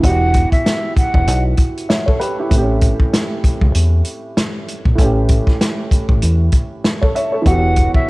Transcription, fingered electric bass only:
0.04 0.44 E1 loud
1.14 1.28 E1 medium
1.28 1.53 B1 medium
2.51 2.92 A1 loud
3.62 3.73 C#2 medium
3.75 4.01 E2 medium
4.86 4.96 A#1 medium
4.99 5.39 A1 loud
6.09 6.20 A1 medium
6.23 6.48 E2 medium
7.46 7.87 E1 loud

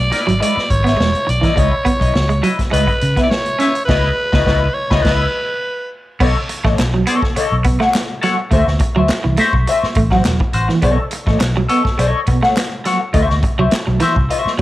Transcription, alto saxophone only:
0.00 0.41 D5 loud
0.42 0.72 D5 loud
0.70 1.31 C#5 loud
1.29 1.61 D5 medium
1.59 2.47 C#5 medium
2.73 3.21 B4 loud
3.23 3.31 D5 medium
3.30 3.84 C#5 loud
3.85 4.75 B4 loud
4.74 5.03 C#5 medium
5.02 5.90 B4 loud

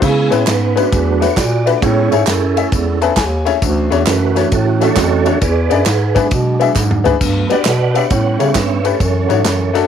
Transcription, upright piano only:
0.01 0.72 C#3 medium
0.30 0.40 G#3 medium
0.30 0.40 B3 medium
0.30 0.41 C#4 medium
0.30 0.41 E4 medium
0.30 0.41 B4 medium
0.76 0.85 G#3 medium
0.76 0.86 B3 medium
0.76 0.86 C#4 medium
0.76 0.86 E4 medium
0.76 0.86 B4 medium
0.92 1.63 E3 medium
1.20 1.30 A3 medium
1.20 1.31 D4 medium
1.20 1.31 E4 medium
1.20 1.31 F#4 medium
1.20 1.31 B4 medium
1.66 1.75 A3 medium
1.66 1.76 D4 medium
1.66 1.76 E4 medium
1.66 1.76 F#4 medium
1.66 1.76 B4 medium
1.82 2.53 A2 medium
2.11 2.21 A3 medium
2.11 2.21 C#4 medium
2.11 2.21 E4 medium
2.11 2.22 G#4 medium
2.11 2.22 C#5 medium
2.56 2.66 A3 medium
2.56 2.66 C#4 medium
2.56 2.66 E4 medium
2.56 2.66 G#4 medium
2.56 2.67 E5 medium
3.01 3.11 A3 medium
3.01 3.11 C#4 medium
3.01 3.11 E4 medium
3.01 3.11 G#4 medium
3.01 3.12 B4 loud
3.01 3.16 A5 medium
3.01 3.04 B5 medium
3.17 3.45 G#5 medium
3.45 3.55 A3 medium
3.45 3.55 C#4 medium
3.45 3.56 E4 medium
3.45 3.56 G#4 medium
3.45 3.56 C#5 loud
3.45 3.60 E5 medium
3.62 4.32 D3 medium
3.90 4.00 A3 medium
3.90 4.00 C#4 medium
3.90 4.01 D4 medium
3.90 4.01 F#4 medium
3.90 4.01 C#5 loud
4.35 4.45 A3 medium
4.35 4.45 C#4 medium
4.35 4.46 D4 medium
4.35 4.46 F#4 medium
4.35 4.46 C#5 medium
4.80 4.90 A3 medium
4.80 4.90 C#4 medium
4.80 4.91 D4 medium
4.80 4.91 F#4 medium
4.80 4.91 E5 medium
5.25 5.35 A3 medium
5.25 5.35 C#4 medium
5.25 5.35 D4 medium
5.25 5.36 F#4 medium
5.25 5.36 C#5 medium
5.41 6.12 E3 medium
5.70 5.80 B3 medium
5.70 5.80 D4 medium
5.70 5.80 E4 medium
5.70 5.80 G#4 medium
5.70 5.81 D5 medium
6.15 6.24 B3 medium
6.15 6.25 D4 medium
6.15 6.25 E4 medium
6.15 6.25 G#4 medium
6.15 6.25 B4 medium
6.60 6.69 B3 medium
6.60 6.70 D4 medium
6.60 6.70 E4 medium
6.60 6.70 G#4 medium
6.60 6.70 E5 medium
7.04 7.14 B3 medium
7.04 7.14 D4 medium
7.04 7.14 E4 medium
7.04 7.15 G#4 medium
7.04 7.15 B4 loud
7.21 7.91 G2 medium
7.50 7.59 B3 medium
7.50 7.59 D4 medium
7.50 7.60 F#4 medium
7.50 7.60 G4 medium
7.50 7.60 D5 medium
7.94 8.04 B3 medium
7.94 8.04 D4 medium
7.94 8.04 F#4 medium
7.94 8.05 G4 medium
7.94 8.05 E5 medium
8.11 8.81 A2 medium
8.39 8.49 A3 medium
8.39 8.49 C#4 medium
8.39 8.49 E4 medium
8.39 8.49 G4 medium
8.39 8.50 C#5 medium
8.84 8.94 A3 medium
8.84 8.94 C#4 medium
8.84 8.94 E4 medium
8.84 8.94 G4 medium
8.84 8.95 B4 medium
9.28 9.38 A3 medium
9.28 9.39 C#4 medium
9.28 9.39 D4 medium
9.28 9.39 F#4 medium
9.28 9.39 C#5 medium
9.73 9.83 A3 medium
9.73 9.83 C#4 medium
9.73 9.84 D4 medium
9.73 9.84 F#4 medium
9.73 9.84 A4 loud

